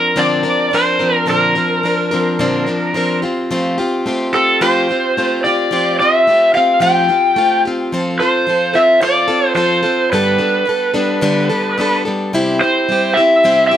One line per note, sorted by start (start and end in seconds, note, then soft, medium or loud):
0.00 0.15 F3 soft
0.00 0.16 C4 soft
0.00 0.16 D4 soft
0.00 0.16 A#4 medium
0.00 0.18 A#4 medium
0.16 0.44 A#2 medium
0.16 0.44 D3 medium
0.16 0.44 F3 medium
0.16 0.44 C4 medium
0.16 0.43 D4 medium
0.16 0.42 A#4 medium
0.16 0.75 D5 loud
0.43 0.70 F3 soft
0.43 0.72 C4 soft
0.43 0.72 D4 medium
0.43 0.72 A#4 soft
0.71 1.00 F3 medium
0.71 1.00 C4 medium
0.71 0.99 D4 medium
0.71 0.98 A#4 medium
0.71 1.25 C5 medium
0.99 1.26 F3 soft
0.99 1.26 C4 soft
0.99 1.27 D4 medium
0.99 1.27 A#4 soft
1.26 1.55 A#2 medium
1.26 1.55 D3 medium
1.26 1.56 F3 medium
1.26 1.56 C4 medium
1.26 1.55 D4 medium
1.26 1.54 A#4 medium
1.30 3.20 A#4 medium
1.55 1.82 F3 soft
1.55 1.83 C4 soft
1.55 1.84 D4 soft
1.55 1.84 A#4 medium
1.83 2.11 F3 medium
1.83 2.12 C4 medium
1.83 2.11 D4 medium
1.83 2.10 A#4 medium
2.11 2.38 F3 medium
2.11 2.39 C4 medium
2.11 2.39 D4 medium
2.11 2.39 A#4 medium
2.39 2.67 A#2 medium
2.39 2.67 D3 medium
2.39 2.67 F3 medium
2.39 2.67 C4 loud
2.39 2.66 D4 loud
2.39 2.65 A#4 medium
2.66 2.93 F3 soft
2.66 2.94 C4 medium
2.66 2.95 D4 medium
2.66 2.95 A#4 medium
2.94 3.23 F3 medium
2.94 3.23 C4 medium
2.94 3.23 D4 medium
2.94 3.22 A#4 medium
3.22 3.50 C4 soft
3.22 3.51 F4 medium
3.22 3.50 G4 medium
3.51 3.78 F3 medium
3.51 3.78 A3 medium
3.51 3.79 C4 medium
3.51 3.78 F4 medium
3.51 3.77 G4 loud
3.78 4.05 C4 soft
3.78 4.06 F4 soft
3.78 4.06 G4 medium
4.06 4.34 A3 medium
4.06 4.34 C4 medium
4.06 4.33 F4 medium
4.06 4.32 G4 medium
4.33 4.60 C4 soft
4.33 4.61 F4 soft
4.33 4.61 G4 medium
4.33 4.63 A4 medium
4.61 4.89 F3 medium
4.61 4.89 A3 medium
4.61 4.89 C4 medium
4.61 4.89 F4 medium
4.61 4.88 G4 medium
4.61 5.44 C5 medium
4.89 5.17 C4 soft
4.89 5.17 F4 soft
4.89 5.17 G4 medium
5.17 5.45 A3 medium
5.17 5.45 C4 medium
5.17 5.45 F4 medium
5.17 5.43 G4 medium
5.44 5.71 C4 soft
5.44 5.71 F4 medium
5.44 5.72 G4 soft
5.44 5.99 D5 medium
5.71 5.99 F3 medium
5.71 5.99 A3 medium
5.71 6.00 C4 medium
5.71 6.00 F4 medium
5.71 5.98 G4 medium
5.99 6.27 C4 soft
5.99 6.28 F4 soft
5.99 6.27 G4 soft
5.99 6.55 E5 loud
6.27 6.55 A3 medium
6.27 6.55 C4 medium
6.27 6.54 F4 medium
6.27 6.53 G4 medium
6.54 6.81 C4 soft
6.54 6.81 F4 medium
6.54 6.82 G4 medium
6.54 6.82 F5 loud
6.80 7.09 F3 medium
6.80 7.09 A3 medium
6.80 7.10 C4 medium
6.80 7.08 F4 medium
6.80 7.07 G4 medium
6.80 7.61 G5 medium
7.08 7.36 C4 soft
7.08 7.37 F4 soft
7.08 7.37 G4 soft
7.36 7.64 A3 medium
7.36 7.65 C4 medium
7.36 7.65 F4 medium
7.36 7.64 G4 medium
7.65 7.93 C4 medium
7.65 7.92 F4 medium
7.65 7.92 G4 medium
7.92 8.20 F3 medium
7.92 8.20 C4 medium
7.92 8.20 F4 medium
7.92 8.19 A4 medium
8.20 8.47 C4 soft
8.20 8.47 F4 soft
8.20 8.47 A4 soft
8.20 8.76 C5 medium
8.47 8.74 F3 medium
8.47 8.75 C4 medium
8.47 8.74 F4 medium
8.47 8.72 A4 medium
8.73 9.00 C4 soft
8.73 9.01 F4 soft
8.73 9.02 A4 medium
8.73 9.03 E5 loud
9.01 9.29 F3 medium
9.01 9.29 C4 medium
9.01 9.28 F4 medium
9.01 9.26 A4 medium
9.01 9.56 D5 medium
9.28 9.55 C4 soft
9.28 9.56 F4 medium
9.28 9.56 A4 medium
9.55 9.83 F3 medium
9.55 9.84 C4 medium
9.55 9.83 F4 medium
9.55 9.81 A4 medium
9.55 10.12 C5 loud
9.83 10.13 C4 soft
9.83 10.12 F4 soft
9.83 10.11 A4 soft
10.12 10.40 G2 medium
10.12 10.40 D3 medium
10.12 10.40 G3 medium
10.12 10.39 B3 medium
10.12 10.38 D4 medium
10.12 10.37 A4 medium
10.12 12.01 B4 medium
10.38 10.64 G3 soft
10.38 10.66 B3 soft
10.38 10.66 D4 soft
10.38 10.66 A4 medium
10.65 10.94 G3 medium
10.65 10.94 B3 medium
10.65 10.93 D4 medium
10.65 10.92 A4 medium
10.94 11.21 G3 medium
10.94 11.21 B3 medium
10.94 11.22 D4 medium
10.94 11.22 A4 medium
11.21 11.49 G2 medium
11.21 11.50 D3 loud
11.21 11.50 G3 loud
11.21 11.50 B3 loud
11.21 11.49 D4 loud
11.21 11.48 A4 loud
11.49 11.76 G3 medium
11.49 11.77 B3 medium
11.49 11.77 D4 medium
11.49 11.77 A4 medium
11.78 12.05 G3 medium
11.78 12.05 B3 medium
11.78 12.05 D4 medium
11.78 12.04 A4 medium
12.05 12.32 G3 soft
12.05 12.33 B3 medium
12.05 12.33 D4 medium
12.05 12.32 A4 soft
12.33 12.60 C3 medium
12.33 12.60 G3 medium
12.33 12.61 C4 loud
12.33 12.61 E4 medium
12.33 12.59 G4 loud
12.60 12.88 C4 soft
12.60 12.89 E4 soft
12.60 12.88 G4 soft
12.60 13.17 C5 loud
12.89 13.16 G3 medium
12.89 13.16 C4 medium
12.89 13.17 E4 medium
12.89 13.16 G4 medium
13.14 13.44 G4 medium
13.14 13.66 E5 loud
13.19 13.44 C4 soft
13.19 13.44 E4 medium
13.44 13.71 C3 medium
13.44 13.71 G3 medium
13.44 13.71 C4 medium
13.44 13.71 E4 medium
13.44 13.70 G4 medium
13.67 13.77 G4 medium
13.67 13.77 E5 loud
13.73 13.77 E4 soft